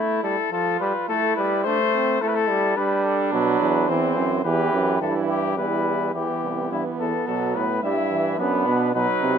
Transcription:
Already playing: A3 E4
0.23 G3 A4
0.52 F3 F4 A4
0.80 G3 B4
1.08 A3 E4 A4
1.36 G3 B4
1.64 A3 D4 C5
1.94 C4
2.21 A3 E4 A4
2.28 B4
2.35 A4
2.50 G3
2.77 G3 D4 B4
3.05 A4
3.32 B2 F#3 B4
3.60 E2
3.88 E2 E3 C4 C5
4.17 F#2
4.44 E2 E3 G4 B4
4.73 F#2
5.01 G2 E3 E4 A4
5.30 G4
5.57 E2 G3 E4 B4
6.14 E2 E3 B3 G4
6.43 C2
6.71 G2 E3 E4
7.00 E2 A4
7.27 B2 F#3 A4
7.55 A2 B4
7.83 G2 G3 E4 E5
8.11 E3
8.39 F#2 B3 D4 B4
8.66 B2
8.94 B2 F#3 D#4 B4
9.22 C3

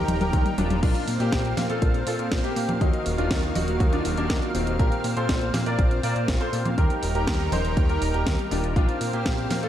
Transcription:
Already playing: D#3 G3 A#3 D#4 G4 A#4
0.08 D#1, closed hi-hat, mid tom
0.21 D#1 G4 A#4, closed hi-hat, mid tom
0.33 D#2, kick, closed hi-hat, mid tom
0.46 closed hi-hat, mid tom
0.58 D#1 G3 A#3 D4 D#4 F4 A#4, closed hi-hat, mid tom
0.70 D#1, closed hi-hat, mid tom
0.83 A#1 A#2 A#3 C4 D4 F4 A#4 F5, kick, closed hi-hat, crash
0.95 closed hi-hat
1.08 A#2, open hi-hat
1.20 A#2 A#3 G4, closed hi-hat
1.32 A#1, kick, snare, closed hi-hat
1.45 closed hi-hat
1.57 A#2, snare, open hi-hat, high conga
1.70 A#2 F4 A4, closed hi-hat
1.82 A#1, kick, closed hi-hat
1.94 closed hi-hat
2.07 A#2 F4 A4, open hi-hat
2.19 A#2, closed hi-hat
2.31 A#1, kick, snare, closed hi-hat
2.44 A#3 G4, closed hi-hat
2.56 A#2 C4 F4 A#4 F5, open hi-hat
2.69 A#2, closed hi-hat, high conga
2.81 D#2 D#3 F#3 A#3 D#4 F4 F#4 D#5, kick, closed hi-hat
2.93 closed hi-hat
3.06 D#1, open hi-hat
3.18 D#1 D4 F4, closed hi-hat
3.31 D#2, kick, snare, closed hi-hat
3.43 closed hi-hat
3.55 D#1 D#4 F#4, open hi-hat, high conga
3.68 D#1, closed hi-hat
3.80 D#2, kick, closed hi-hat
3.93 D4 F4, closed hi-hat
4.05 D#1, open hi-hat
4.17 D#1 A#3 D4, closed hi-hat
4.30 D#2, kick, snare, closed hi-hat
4.42 closed hi-hat
4.55 D#1 A#2 D#3 A#3 C4 F4 F#4 D#5, open hi-hat
4.67 D#1, closed hi-hat
4.79 A#1 A#2 A#3 C4 F4 G4 A#4 F5, kick, closed hi-hat
4.92 closed hi-hat
5.04 A#2, open hi-hat
5.17 A#2 A4 C5, closed hi-hat
5.29 A#1, kick, snare, closed hi-hat
5.41 closed hi-hat
5.54 A#2, snare, open hi-hat, high conga
5.66 A#2 A#4 D5, closed hi-hat
5.79 A#1, kick, closed hi-hat
5.91 closed hi-hat
6.03 A#2 A#4 D5, open hi-hat
6.16 A#2, closed hi-hat
6.28 A#1, kick, snare, closed hi-hat
6.41 A4 C5, closed hi-hat
6.53 A#2 C4 F4 A#4 F5, open hi-hat
6.65 A#2, closed hi-hat, high conga
6.78 D#2 D#3 G3 A#3 D#4 G4 A#4, kick, closed hi-hat
6.90 closed hi-hat
7.03 D#1, open hi-hat
7.15 D#1 G4 A#4, closed hi-hat
7.27 D#2, kick, snare, closed hi-hat
7.40 closed hi-hat
7.52 D#1 D#4 C5, open hi-hat, high conga
7.65 D#1, closed hi-hat
7.77 D#2, kick, closed hi-hat
7.89 G4 A#4, closed hi-hat
8.02 D#1, open hi-hat
8.14 D#1 G4 A#4, closed hi-hat
8.27 D#2, kick, snare, closed hi-hat
8.39 closed hi-hat
8.51 D#1 G3 A#3 D4 D#4 F4 A#4, open hi-hat
8.64 D#1, closed hi-hat
8.76 A#1 A#2 A#3 C4 D4 F4 A#4 F5, kick, closed hi-hat
8.89 closed hi-hat
9.01 A#2, open hi-hat
9.13 A#2 A#3 G4, closed hi-hat
9.26 A#1, kick, snare, closed hi-hat
9.38 closed hi-hat
9.50 A#2, snare, open hi-hat, high conga
9.63 A#2 F4 A4, closed hi-hat

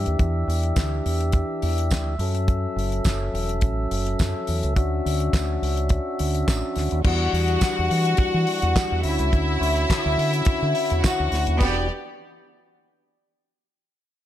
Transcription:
Already playing: E3 D4 G4 E5
0.06 D#2, closed hi-hat
0.19 E2, kick, closed hi-hat
0.48 E2, open hi-hat
0.63 closed hi-hat
0.76 D2, kick, snare, clap, closed hi-hat, tambourine
1.06 E2, open hi-hat
1.21 closed hi-hat
1.32 kick, closed hi-hat
1.62 E2, open hi-hat
1.78 closed hi-hat
1.91 D2, kick, snare, clap, closed hi-hat, tambourine
2.19 F#2 F#3 C#4 A4, open hi-hat
2.35 closed hi-hat
2.48 kick, closed hi-hat
2.76 F#1, open hi-hat
2.92 closed hi-hat
3.04 F#1, kick, snare, clap, closed hi-hat, tambourine
3.33 E1, open hi-hat
3.49 closed hi-hat
3.61 A1, kick, closed hi-hat
3.91 F#1, open hi-hat
4.07 closed hi-hat
4.19 F#2, kick, snare, clap, closed hi-hat, tambourine
4.47 E2, open hi-hat
4.63 C#2, closed hi-hat
4.76 D2 C#4 D4 F#4, kick, closed hi-hat
5.06 D2, open hi-hat
5.20 closed hi-hat
5.33 D2, kick, snare, clap, closed hi-hat, tambourine
5.62 C#2, open hi-hat
5.77 closed hi-hat
5.89 kick, closed hi-hat
6.19 D2, open hi-hat
6.34 closed hi-hat
6.48 A1, kick, snare, clap, closed hi-hat, tambourine
6.76 D2, snare, open hi-hat
6.91 D#2, closed hi-hat
7.04 E2 E3 G3 D4 F#4 F#5, kick, crash
7.33 E2, open hi-hat
7.48 closed hi-hat
7.61 kick, snare, clap, closed hi-hat, tambourine
7.79 E2
7.91 E3, open hi-hat
8.05 closed hi-hat
8.17 muted fingered electric bass stroke, kick, closed hi-hat
8.34 E3
8.47 open hi-hat
8.62 E2, closed hi-hat
8.76 kick, snare, clap, closed hi-hat, tambourine
8.92 E2
9.03 D2 D3 C#4 E4 E5, open hi-hat
9.19 C#2, closed hi-hat
9.33 D2, kick, closed hi-hat
9.61 D2, open hi-hat
9.77 closed hi-hat
9.90 kick, snare, clap, closed hi-hat, tambourine
10.06 D2
10.18 D3, open hi-hat
10.33 closed hi-hat
10.45 muted fingered electric bass stroke, kick, closed hi-hat
10.62 D3
10.75 open hi-hat
10.90 E2, closed hi-hat
11.03 F#4 F#5, kick, snare, clap, closed hi-hat, tambourine
11.20 D2
11.32 D2, snare, open hi-hat
11.47 D#2, closed hi-hat
11.60 E1 E3 B3 D4 F#4 G4 D5, kick, tambourine, crash

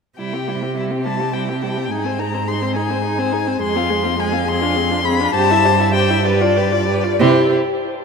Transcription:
0.18 C3 G3 E4 G5
0.33 C4 G4
0.48 G3 E4
0.62 C4 G4
0.76 G3 E4 E5
0.91 C4 G4
1.05 G3 E4 A5
1.20 C4 G4
1.33 G3 E4 G5
1.48 C4 G4
1.62 G3 E4 G5
1.77 C4 G4
1.90 G#2 D#4 G#4 G#5
2.05 C4 C5
2.19 D#4 G#4 A#5
2.34 C4 C5
2.48 D#4 G#4 C6
2.62 C4 C5
2.76 D#4 G#4 G#5
2.90 C4 C5
3.04 D#4 G#4
3.19 C4 C5
3.32 D#4 G#4
3.47 C4 C5
3.62 F2 G#3 G#4 C6
3.76 C4 F4
3.90 G#3 G#4
4.04 C4 F4
4.18 G#3 G#4 G#5
4.33 C4 F4
4.48 C4 G#4 C6
4.62 D4 F4
4.76 C4 G#4
4.91 D4 F4
5.05 C4 G#4 B5
5.20 D4 F4
5.34 G2 G4 C5 A5
5.50 E4 E5
5.65 G4 C5
5.80 E4 E5
5.94 G4 C5 G5
6.10 E4 E5
6.25 G4 B4 D5
6.41 F4 D5
6.57 G4 B4
6.72 F4 D5
6.88 G4 B4
7.04 F4 D5
7.20 C3 E4 G4 C5

